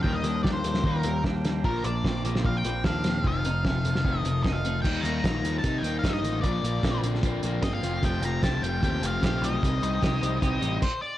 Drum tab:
CC |----------------|----------------|----------------|x---------------|
HH |--x---x---x---x-|--x---x---x---x-|--x---x---x---x-|--x-x-x-x-x-x-x-|
SD |----o--o----o-o-|----o--o----o-o-|----o--o----o---|----o-------o---|
BD |o---o---o---o---|o---o---o---o---|o---o---o---o---|o---o---o---o---|

CC |----------------|----------------|------------x---|
HH |x-x-x-x-x-x-x-x-|x-x-x-x-x-x-x-x-|x-x-x-x-x-x-----|
SD |----o--o----o---|----o-------o---|----o-----------|
BD |o---o---o---o---|o---o---o---o---|o---o---o---o---|